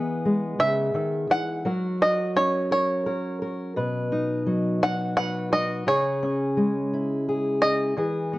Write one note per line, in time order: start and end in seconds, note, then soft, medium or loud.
0.00 0.58 E3 medium
0.00 1.66 B3 soft
0.00 1.66 G#4 soft
0.00 0.59 D#5 medium
0.25 1.62 G#3 soft
0.59 0.94 C#3 soft
0.59 1.26 E5 medium
0.94 1.29 D#3 soft
1.30 1.65 E3 soft
1.30 1.97 F#5 medium
1.65 4.45 F#3 medium
1.65 2.70 A#4 soft
2.01 3.72 F#4 soft
2.01 2.38 D#5 medium
2.36 3.72 C#4 soft
2.36 2.69 C#5 medium
2.71 3.05 A#4 medium
2.71 3.47 C#5 medium
3.06 3.41 A#4 soft
3.42 3.73 A#4 medium
3.76 5.83 B2 medium
3.76 5.16 B4 medium
4.12 5.83 D#4 soft
4.46 5.87 F#3 soft
4.82 5.52 F#4 soft
4.82 5.16 F#5 medium
5.17 5.83 B4 medium
5.17 5.52 F#5 medium
5.53 5.83 F#4 soft
5.53 5.88 D#5 medium
5.87 7.97 C#3 medium
5.87 7.27 G#4 medium
5.87 7.68 C#5 medium
6.23 7.93 C#4 soft
6.57 7.93 G#3 medium
6.93 7.62 E4 medium
7.29 7.97 G#4 medium
7.62 7.93 E4 soft
7.62 8.39 D#5 medium
7.98 8.39 E3 medium
7.98 8.39 G#4 soft
8.33 8.39 B3 soft